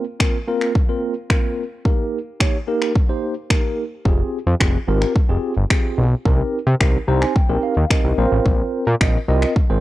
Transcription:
0.20 A#3 C4 F4 A#4, finger snap, kick
0.47 A#3 C4 F4 A#4
0.61 finger snap
0.75 kick
0.89 A#3 C4 F4 A#4
1.30 A#3 C4 F4 A#4, finger snap, kick
1.85 A#3 D#4 G4 A#4, kick
2.40 A#3 D#4 G4 C#5, finger snap, kick
2.67 A#3 D#4 G4 A#4
2.82 finger snap
2.95 kick
3.09 A#3 D#4 G4 C5
3.50 A#3 D#4 G4 A#4, finger snap, kick
4.05 F1 C4 F4 G4 G#4, kick
4.47 F2
4.60 F1 C4 F4 G4 G#4, finger snap, kick
4.88 G#1 C4 F4 G4 A#4
5.02 finger snap
5.16 kick
5.29 F1 C4 F4 G4 G#4
5.57 G1
5.70 C4 F4 G4 G#4, finger snap, kick
5.98 B1
6.25 C2 C4 D#4 G4 A#4, kick
6.67 C3
6.80 C2 C4 D#4 G4 A#4, finger snap, kick
7.08 C2 C4 D#4 G4 C5 A#5
7.22 G#5, finger snap
7.36 G5, kick
7.49 A#1 C4 D#4 G4 A#4
7.63 F5
7.77 D#2
7.90 C4 D#4 G4 A#4 D#5, finger snap, kick
8.04 C2
8.18 A#1 C4 F4 A#4 C5 F5
8.32 A1
8.46 A#1, kick
8.87 A#2
9.01 A#1 C4 F4 A#4 D#5, finger snap, kick
9.28 C2 C4 F4 A#4 D#5
9.42 finger snap
9.56 kick
9.70 G#1 C4 F4 A#4 C5

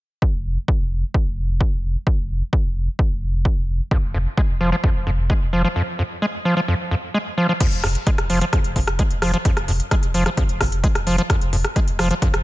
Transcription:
0.22 kick
0.34 F1
0.45 F1
0.68 kick
0.80 F1
0.91 F1
1.14 kick
1.26 F1
1.37 F1
1.49 F1
1.61 kick
1.72 F1
1.84 F1
2.07 kick
2.18 F1
2.30 F1
2.53 kick
2.64 F1
2.76 F1
2.99 kick
3.11 F1
3.22 F1
3.34 F1
3.45 kick
3.57 F1
3.68 F1
3.91 F2, kick
4.03 F1
4.14 F1 F2
4.37 G#3, kick
4.49 F1
4.61 F1 F3
4.72 F3
4.84 F2, kick
4.95 F1
5.07 F1 F2
5.18 F1
5.30 G#3, kick
5.41 F1
5.53 F1 F3
5.64 F3
5.76 F2
5.99 F2
6.22 G#3
6.45 F3
6.57 F3
6.68 F2
6.91 F2
7.14 G#3
7.38 F3
7.49 F3
7.61 F2, kick, closed hi-hat, crash
7.72 F1, closed hi-hat
7.84 F1 F2, cross-stick, open hi-hat
7.95 closed hi-hat
8.07 G#3, kick, closed hi-hat
8.18 F1, cross-stick, closed hi-hat
8.30 F1 F3, open hi-hat
8.41 closed hi-hat
8.53 F2, kick, cross-stick, closed hi-hat
8.64 F1, closed hi-hat
8.76 F1 F2, kick, open hi-hat
8.88 F1, cross-stick, closed hi-hat
8.99 G#3, kick, closed hi-hat
9.11 F1, closed hi-hat
9.22 F1 F3, cross-stick, open hi-hat
9.34 F3, closed hi-hat
9.45 F2, kick, closed hi-hat
9.57 F1, cross-stick, closed hi-hat
9.68 F1 F2, open hi-hat
9.80 closed hi-hat
9.91 G#3, kick, cross-stick, closed hi-hat
10.03 F1, closed hi-hat
10.14 F1 F3, open hi-hat
10.26 F3, cross-stick, closed hi-hat
10.37 F2, kick, closed hi-hat
10.49 F1, closed hi-hat
10.61 F1 F2, kick, cross-stick, open hi-hat
10.72 F1, closed hi-hat
10.84 G#3, kick, closed hi-hat
10.95 F1, cross-stick, closed hi-hat
11.07 F1 F3, open hi-hat
11.18 F3, closed hi-hat
11.30 F2, kick, cross-stick, closed hi-hat
11.41 F1, closed hi-hat
11.53 F1 F2, open hi-hat
11.65 cross-stick, closed hi-hat
11.76 G#3, kick, closed hi-hat
11.87 F1, closed hi-hat
11.99 F1 F3, cross-stick, open hi-hat
12.11 F3, closed hi-hat
12.22 F2, kick, closed hi-hat
12.34 F1, cross-stick, closed hi-hat

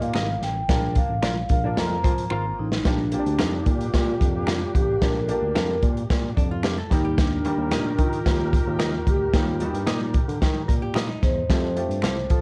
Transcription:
Already playing: A#3 D#4 G4 A#4
0.01 A#2 F5, closed hi-hat
0.14 G#1 D#4 G4 A#4 D#5, finger snap, snare, closed hi-hat
0.42 A1 G5, snare, closed hi-hat
0.69 A#1 A#3 D4 F4 A#4, kick, snare, closed hi-hat
0.95 F5, kick, closed hi-hat
1.10 A1
1.22 A#1 A#3 D4 F4 A#4 D5 F5, finger snap, snare, closed hi-hat
1.49 A#1 F4 A#4 F5, kick, closed hi-hat
1.64 A#3 D4 F4 A#4
1.76 F2 A#3 C4 F4 A#4 A#5, snare, closed hi-hat
2.04 F3 A#3 C4 F4, kick, closed hi-hat
2.18 closed hi-hat
2.30 G#1 A#3 C4 F4 A#4 C5 F5, finger snap
2.58 A1 D#4
2.72 snare
2.85 A#1 A#3 D4 F4 G4, kick, snare, closed hi-hat
3.12 A#3 C4 F4 G4, closed hi-hat
3.19 D4
3.26 D2, closed hi-hat
3.39 F2 D4 D#4 G4 A#4 F5, finger snap, snare, closed hi-hat
3.66 A#2 F4, kick, closed hi-hat
3.81 closed hi-hat
3.94 A#2 F4, kick, snare, closed hi-hat
4.21 F2, kick, closed hi-hat
4.47 D4 G4 A#4 F5, finger snap, snare, closed hi-hat
4.75 A1 G4, kick, closed hi-hat
5.01 A#1 A#3 D4 F4 G4 A#4, kick, snare, closed hi-hat
5.21 A4
5.28 A#3 D4 F4 G4 A#4, closed hi-hat
5.42 D2
5.55 F2 D4 G4 A#4 F5, finger snap, snare, closed hi-hat
5.82 A#2, kick, closed hi-hat
5.97 closed hi-hat
6.10 A#2, kick, snare, closed hi-hat
6.37 F2 D4, kick, closed hi-hat
6.51 F4
6.63 D4 G4 A#4 F5, finger snap, snare, closed hi-hat
6.78 A4
6.90 D#2 D#3 G3 A#3 D#4 G4 A#4, kick, snare, closed hi-hat
7.05 G4
7.18 D4, kick, snare, closed hi-hat
7.45 D#3 G3 A#3 G4, closed hi-hat
7.58 D#2
7.71 A#2 D#4 G4 A#4 D#5, finger snap, snare, closed hi-hat
7.98 D#3 F4, kick, closed hi-hat
8.13 closed hi-hat
8.26 D#2 F4, kick, snare, closed hi-hat
8.53 kick, closed hi-hat
8.66 D#2
8.79 D#4 G4 A#4 D#5, finger snap, snare, closed hi-hat
9.06 D2 G4, kick, closed hi-hat
9.33 D#2 G3 A#3 D#4 F4 G4, kick, snare, closed hi-hat
9.60 G3 A#3 D#4 F#4, closed hi-hat
9.69 G4
9.73 G2, closed hi-hat
9.87 A#2 D#4 G4 A#4 D#5, finger snap, snare, closed hi-hat
10.14 kick, closed hi-hat
10.28 D3, closed hi-hat
10.42 D#3, kick, snare, closed hi-hat
10.68 A#2 A#4, kick, closed hi-hat
10.82 G4
10.94 D#4 F4 G4 A#4 D#5, finger snap, snare, closed hi-hat
11.09 D#4
11.22 E2 C5, kick, snare, closed hi-hat
11.49 F2 A3 C4 F4 G4, kick, snare, closed hi-hat
11.76 A3 C4 F4 G4, closed hi-hat
11.89 G2, closed hi-hat
12.02 C2 C4 G4 A4 F5, finger snap, snare, closed hi-hat
12.30 F3 A4, kick, closed hi-hat

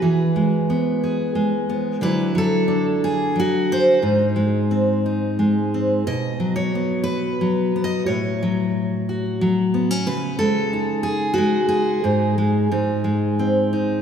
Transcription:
Already playing: B4
0.02 E3 G#4
0.36 G#3
0.70 B3
1.04 G#4
1.35 G#3
1.69 B3
2.01 D3 F#3 D4 E4 B4
2.35 F#3 A4
2.68 D4
3.04 G#4
3.36 F#3 F#4
3.72 C5
4.02 G#2 D#4
4.36 G#3
4.71 C4
5.06 D#4
5.39 G#3
5.74 C4
6.07 B2 D#5
6.40 F#3
6.56 C#5
6.75 B3
7.04 B4
7.41 F#3
7.76 B3
7.84 D#5
8.06 A2 C#5
8.43 F#3
9.09 F#4
9.41 F#3
9.74 B3
9.91 C#4
10.07 C#3 B4
10.39 G#3 A4
10.73 D#4
11.03 G#4
11.34 F#4
11.38 G#3
11.69 G#4
12.04 G#2 D#4
12.38 G#3
12.72 G#2 D#4
13.04 G#3
13.39 C4
13.73 D#4

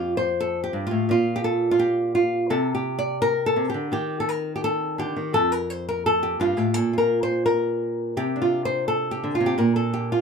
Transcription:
Already playing: F2 F4 G4
0.17 C5
0.40 A4
0.64 G4
0.73 G2
0.87 F4
0.91 A2
1.09 A#2 F4
1.36 G4
1.44 A4
1.71 F4
1.79 G4
2.15 F4
2.50 C3 A4
2.75 G4
2.99 D5
3.22 A#4
3.46 A4
3.56 C3
3.70 G4
3.74 D3
3.92 D#3 G4
4.20 A4
4.29 A#4
4.56 G4
4.64 A4
4.98 D3 G4
5.16 D#3
5.33 F2 A4
5.52 A#4
5.70 C5
5.89 A#4
6.06 A4
6.23 G4
6.40 G2 F4
6.57 A2 G4
6.74 A#2 A4
6.93 F4
6.98 A#4
7.23 C5
7.46 A#4
8.17 C3 G4
8.36 D4
8.42 F4
8.65 C5
8.88 A4
9.11 G4
9.24 D3
9.35 F4
9.41 C3
9.46 G4
9.58 A#2 A#4
9.76 A4
9.94 G4
10.12 F4

